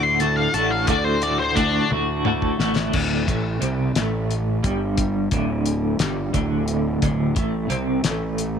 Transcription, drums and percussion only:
0.20 closed hi-hat
0.54 closed hi-hat
0.87 kick, closed hi-hat
1.22 closed hi-hat
1.57 kick, closed hi-hat
1.91 high tom
2.25 mid tom
2.42 kick
2.60 snare
2.76 snare
2.93 kick, crash
3.28 kick, closed hi-hat
3.62 closed hi-hat
3.96 snare, closed hi-hat
4.31 closed hi-hat
4.64 kick, closed hi-hat
4.98 kick, closed hi-hat
5.31 kick, closed hi-hat
5.66 closed hi-hat
5.99 snare, closed hi-hat
6.34 kick, closed hi-hat
6.68 closed hi-hat
7.02 kick, closed hi-hat
7.36 kick, closed hi-hat
7.70 closed hi-hat
8.04 snare, closed hi-hat
8.38 closed hi-hat

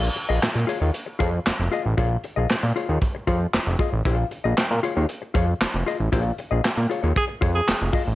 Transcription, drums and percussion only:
0.16 closed hi-hat
0.42 snare, clap, closed hi-hat
0.69 closed hi-hat
0.94 closed hi-hat
1.20 kick, closed hi-hat
1.46 snare, clap, closed hi-hat
1.73 closed hi-hat
1.98 kick, closed hi-hat
2.24 closed hi-hat
2.49 snare, clap, closed hi-hat
2.76 closed hi-hat
3.02 kick, closed hi-hat
3.27 kick, closed hi-hat
3.53 snare, clap, closed hi-hat
3.79 kick, closed hi-hat
4.05 kick, closed hi-hat
4.31 closed hi-hat
4.57 snare, clap, closed hi-hat
4.83 closed hi-hat
5.09 closed hi-hat
5.35 kick, closed hi-hat
5.61 snare, clap, closed hi-hat
5.87 closed hi-hat
6.13 kick, closed hi-hat
6.38 closed hi-hat
6.64 snare, clap, closed hi-hat
6.91 closed hi-hat
7.16 kick, closed hi-hat
7.42 kick, closed hi-hat
7.68 snare, clap, closed hi-hat
7.93 kick, open hi-hat

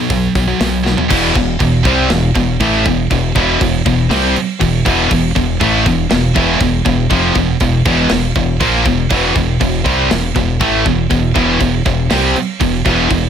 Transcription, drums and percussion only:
0.10 kick, open hi-hat
0.35 kick, open hi-hat
0.61 snare, open hi-hat
0.86 snare
0.98 floor tom
1.11 kick, crash
1.35 kick, crash
1.60 kick, crash
1.85 kick, crash
2.10 snare, crash
2.35 kick, crash
2.60 kick, crash
2.86 kick, crash
3.11 kick, crash
3.36 kick, crash
3.61 kick, crash
3.86 kick, crash
4.11 snare, crash
4.36 crash
4.61 kick, crash
4.86 kick, crash
5.11 kick, crash
5.36 kick, crash
5.61 kick, crash
5.86 kick, crash
6.11 snare, crash
6.36 kick, crash
6.60 kick, crash
6.85 kick, crash
7.10 kick, crash
7.35 kick, crash
7.60 kick, crash
7.85 kick, crash
8.10 snare, crash
8.35 kick, crash
8.60 kick, crash
8.85 kick, crash
9.10 kick, crash
9.35 kick, crash
9.61 kick, crash
9.86 kick, crash
10.11 snare, crash
10.36 kick, crash
10.61 kick, crash
10.86 kick, crash
11.11 kick, crash
11.36 kick, crash
11.60 kick, crash
11.86 kick, crash
12.11 snare, crash
12.36 crash
12.61 kick, crash
12.86 kick, crash
13.11 kick, crash

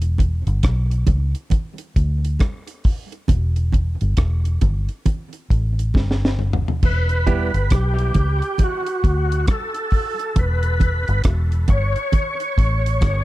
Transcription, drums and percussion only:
0.02 closed hi-hat
0.18 kick, closed hi-hat, low conga
0.47 closed hi-hat
0.63 kick, cross-stick, closed hi-hat
0.91 closed hi-hat
1.07 kick, closed hi-hat, high conga, low conga
1.35 closed hi-hat
1.50 kick, closed hi-hat, low conga
1.78 closed hi-hat
1.96 kick, closed hi-hat
2.25 closed hi-hat
2.39 kick, cross-stick, closed hi-hat, high conga
2.67 closed hi-hat
2.84 kick, open hi-hat
3.12 closed hi-hat
3.28 kick, closed hi-hat, low conga
3.56 closed hi-hat
3.72 kick, closed hi-hat, low conga
4.01 closed hi-hat
4.17 kick, cross-stick, closed hi-hat
4.45 closed hi-hat
4.61 kick, closed hi-hat, low conga
4.89 closed hi-hat
5.06 kick, closed hi-hat, low conga
5.33 closed hi-hat
5.50 kick, closed hi-hat
5.79 closed hi-hat
5.94 kick, snare, high conga
6.11 snare
6.25 snare
6.39 mid tom
6.53 floor tom
6.68 floor tom
6.83 kick, crash, low conga
7.09 closed hi-hat
7.27 kick, closed hi-hat, low conga
7.54 closed hi-hat
7.70 kick, cross-stick, closed hi-hat
7.99 closed hi-hat
8.14 kick, closed hi-hat, high conga, low conga
8.42 closed hi-hat
8.58 kick, closed hi-hat, low conga
8.86 closed hi-hat
9.04 kick, closed hi-hat
9.32 closed hi-hat
9.47 kick, cross-stick, closed hi-hat, high conga
9.74 closed hi-hat
9.91 kick, open hi-hat
10.19 closed hi-hat
10.36 kick, closed hi-hat, low conga
10.63 closed hi-hat
10.80 kick, closed hi-hat, low conga
11.08 closed hi-hat
11.24 kick, cross-stick, closed hi-hat
11.52 closed hi-hat
11.68 kick, closed hi-hat, low conga
11.96 closed hi-hat
12.12 kick, closed hi-hat, low conga
12.40 closed hi-hat
12.58 kick, closed hi-hat
12.86 closed hi-hat
13.01 kick, cross-stick, closed hi-hat, high conga

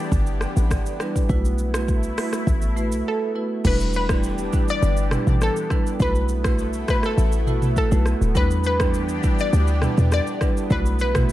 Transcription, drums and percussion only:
0.12 kick, shaker
0.27 shaker
0.41 cross-stick, shaker
0.57 shaker
0.71 kick, cross-stick, shaker
0.86 shaker
1.00 cross-stick, shaker
1.16 kick, shaker
1.29 kick, shaker
1.45 shaker
1.58 shaker
1.74 cross-stick, shaker
1.88 kick, shaker
2.03 shaker
2.18 cross-stick, open hi-hat, shaker
2.33 cross-stick, shaker
2.47 kick, shaker
2.62 shaker
2.77 shaker
2.92 shaker
3.65 kick, crash, shaker
3.80 shaker
3.93 shaker
4.09 kick, cross-stick, shaker
4.23 shaker
4.38 shaker
4.53 kick, shaker
4.68 shaker
4.83 shaker
4.97 shaker
5.11 cross-stick, mid tom, shaker
5.27 mid tom, shaker
5.41 cross-stick, shaker
5.56 shaker
5.70 kick, cross-stick, shaker
5.87 shaker
6.00 kick, shaker
6.15 shaker
6.29 shaker
6.44 kick, cross-stick, shaker
6.59 shaker
6.73 shaker
6.88 kick, cross-stick, shaker
7.03 cross-stick, shaker
7.18 shaker
7.32 shaker
7.47 mid tom, shaker
7.62 mid tom, shaker
7.76 kick, shaker
7.92 shaker
8.06 cross-stick, shaker
8.22 shaker
8.35 kick, shaker
8.51 shaker
8.64 shaker
8.80 kick, cross-stick, shaker
8.94 shaker
9.09 shaker
9.23 kick, shaker
9.39 shaker
9.53 shaker
9.67 shaker
9.82 cross-stick, mid tom, shaker
9.97 mid tom, shaker
10.12 cross-stick, shaker
10.27 shaker
10.41 kick, cross-stick, shaker
10.57 shaker
10.70 kick, shaker
10.86 shaker
10.99 shaker
11.15 kick, cross-stick, mid tom, shaker
11.29 shaker

